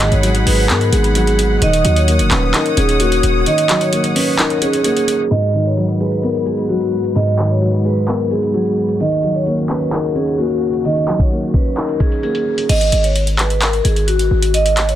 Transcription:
Already playing: grand piano G#2 F#3 G#3 B3, string section G#4 F#5 B5
0.00 grand piano D#3, clap, closed hi-hat
0.12 808-style bass G#1, vibraphone C#5, closed hi-hat
0.23 grand piano F#3, closed hi-hat
0.35 closed hi-hat
0.46 808-style bass G#1, grand piano G#3, vibraphone B4, open hi-hat
0.69 808-style bass G#2, grand piano B3, clap, closed hi-hat
0.81 closed hi-hat
0.92 808-style bass G#1, grand piano G#3, vibraphone G#4, closed hi-hat
1.04 closed hi-hat
1.15 grand piano F#3, vibraphone G#4, closed hi-hat
1.27 closed hi-hat
1.39 closed hi-hat
1.62 808-style bass D#1, grand piano D#3, string section C#5 D#6, vibraphone D#5, closed hi-hat
1.73 closed hi-hat
1.85 808-style bass D#2, grand piano F#3, closed hi-hat
1.96 vibraphone C#5, closed hi-hat
2.08 grand piano A#3, closed hi-hat
2.19 808-style bass F#1, closed hi-hat
2.31 808-style bass D#1, grand piano C#4, vibraphone B4, clap, closed hi-hat
2.54 grand piano D#4, vibraphone A#4, clap, closed hi-hat
2.66 closed hi-hat
2.77 808-style bass D#1, grand piano C#4, vibraphone G#4, closed hi-hat
2.89 closed hi-hat
3.00 grand piano A#3, vibraphone F#4, closed hi-hat
3.12 closed hi-hat
3.23 808-style bass D#1, closed hi-hat
3.46 grand piano D#3, vibraphone D#5, closed hi-hat
3.58 closed hi-hat
3.69 grand piano F#3, clap, closed hi-hat
3.80 vibraphone C#5, closed hi-hat
3.93 grand piano A#3, closed hi-hat
4.04 closed hi-hat
4.16 grand piano C#4, vibraphone B4, open hi-hat
4.39 grand piano D#4, vibraphone A#4, clap, closed hi-hat
4.50 closed hi-hat
4.62 grand piano C#4, vibraphone G#4, closed hi-hat
4.73 closed hi-hat
4.84 grand piano A#3, vibraphone G#4, closed hi-hat
4.97 closed hi-hat
5.08 closed hi-hat
5.31 grand piano G#2, string section G#2 F#3 B4, vibraphone D#5, closed hi-hat
5.43 closed hi-hat
5.54 grand piano D#3, closed hi-hat
5.66 vibraphone C#5, closed hi-hat
5.77 grand piano F#3, closed hi-hat
5.89 closed hi-hat
6.00 grand piano G#3, vibraphone B4, closed hi-hat
6.12 closed hi-hat
6.23 grand piano B3, vibraphone A#4, closed hi-hat
6.35 closed hi-hat
6.46 grand piano G#3, vibraphone G#4, closed hi-hat
6.58 closed hi-hat
6.69 grand piano F#3, vibraphone F#4, closed hi-hat
6.81 closed hi-hat
7.04 closed hi-hat
7.16 grand piano G#2, vibraphone D#5, closed hi-hat
7.27 closed hi-hat
7.38 grand piano D#3, clap, closed hi-hat
7.50 vibraphone C#5, closed hi-hat
7.62 grand piano F#3, closed hi-hat
7.73 closed hi-hat
7.85 grand piano G#3, vibraphone B4, closed hi-hat
7.97 closed hi-hat
8.08 grand piano B3, vibraphone A#4, clap, closed hi-hat
8.20 closed hi-hat
8.31 grand piano G#3, vibraphone G#4, closed hi-hat
8.43 closed hi-hat
8.54 grand piano F#3, vibraphone G#4, closed hi-hat
8.66 closed hi-hat
8.89 closed hi-hat
9.00 string section D#2 C#3 F#4, grand piano D#3, vibraphone D#5, closed hi-hat
9.12 closed hi-hat
9.23 grand piano F#3, closed hi-hat
9.35 vibraphone C#5, closed hi-hat
9.46 grand piano A#3, closed hi-hat
9.58 closed hi-hat
9.69 grand piano C#4, vibraphone B4, clap, closed hi-hat
9.81 closed hi-hat
9.92 grand piano D#4, vibraphone A#4, clap, closed hi-hat
10.04 closed hi-hat
10.16 grand piano C#4, vibraphone G#4, closed hi-hat
10.27 closed hi-hat
10.38 grand piano A#3, vibraphone F#4, closed hi-hat
10.50 closed hi-hat
10.73 closed hi-hat
10.85 grand piano D#3, vibraphone D#5, closed hi-hat
10.96 closed hi-hat
11.08 grand piano F#3, clap, closed hi-hat
11.19 vibraphone C#5, kick, closed hi-hat
11.31 grand piano A#3, closed hi-hat
11.54 grand piano C#4, vibraphone B4, kick, closed hi-hat
11.66 closed hi-hat
11.77 grand piano D#4, vibraphone A#4, clap, closed hi-hat
11.89 closed hi-hat
12.00 grand piano C#4, vibraphone G#4, kick, closed hi-hat
12.12 closed hi-hat
12.23 grand piano A#3, vibraphone G#4, closed hi-hat
12.35 closed hi-hat
12.58 closed hi-hat
12.69 808-style bass G#1, vibraphone D#5, closed hi-hat, crash
12.81 closed hi-hat
12.92 808-style bass G#1, closed hi-hat
13.04 vibraphone C#5, closed hi-hat
13.16 closed hi-hat
13.27 closed hi-hat
13.38 vibraphone B4, clap, closed hi-hat
13.50 closed hi-hat
13.62 vibraphone A#4, clap, closed hi-hat
13.73 closed hi-hat
13.84 808-style bass G#1, vibraphone G#4, closed hi-hat
13.96 closed hi-hat
14.07 vibraphone F#4, closed hi-hat
14.19 closed hi-hat
14.31 808-style bass G#1
14.42 closed hi-hat
14.54 vibraphone D#5, closed hi-hat
14.66 closed hi-hat
14.77 clap, closed hi-hat
14.89 vibraphone C#5, closed hi-hat

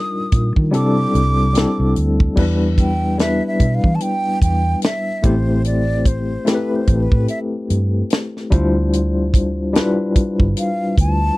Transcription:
Already playing: tine electric piano G3 D4 D#4 F4 A#4, flute D#6
0.32 fingered electric bass A#2, kick, closed hi-hat
0.56 fingered electric bass D#3, kick
0.71 fingered electric bass C3, tine electric piano G3 C4 D4 E4 A4, closed hi-hat
0.76 flute D6
1.15 fingered electric bass C2, closed hi-hat
1.53 tine electric piano G3 C4 D4 E4 A4, closed hi-hat
1.58 snare
1.79 fingered electric bass C2
1.96 fingered electric bass D2, closed hi-hat
2.20 kick
2.36 fingered electric bass E2, tine electric piano G3 B3 D4 E4 B4, kick, crash
2.78 flute G5, kick, closed hi-hat
3.18 tine electric piano G3 B3 D4 E4 B4, flute E5, snare, closed hi-hat
3.47 flute E5
3.60 fingered electric bass B2, kick, closed hi-hat
3.75 flute F5
3.84 fingered electric bass E3, kick
3.95 flute A5
4.00 flute G5, closed hi-hat
4.42 fingered electric bass E2, flute G5, kick, closed hi-hat
4.82 flute E5, snare, closed hi-hat
5.23 fingered electric bass A1, tine electric piano A3 B3 E4 G4 C5, flute C5, kick, closed hi-hat
5.30 tine electric piano C4
5.65 flute D5, closed hi-hat
6.05 flute C5, kick, closed hi-hat
6.45 tine electric piano A3 C4 E4 G4 A4, flute B4, snare, closed hi-hat
6.55 tine electric piano B4
6.76 flute C5
6.87 fingered electric bass A1, kick, closed hi-hat
7.03 flute B4
7.12 fingered electric bass A2, kick
7.28 flute E5, closed hi-hat
7.70 fingered electric bass G2, closed hi-hat
8.10 snare, closed hi-hat
8.37 snare
8.50 fingered electric bass D2, tine electric piano G3 D4 E4 F4 C5, kick, closed hi-hat
8.93 closed hi-hat
9.34 kick, closed hi-hat
9.73 tine electric piano G3 D4 E4 F4 B4, snare, closed hi-hat
10.15 muted fingered electric bass stroke, kick, closed hi-hat
10.40 fingered electric bass G1, kick
10.57 flute F5, closed hi-hat
10.97 fingered electric bass D2, flute A5, kick, closed hi-hat

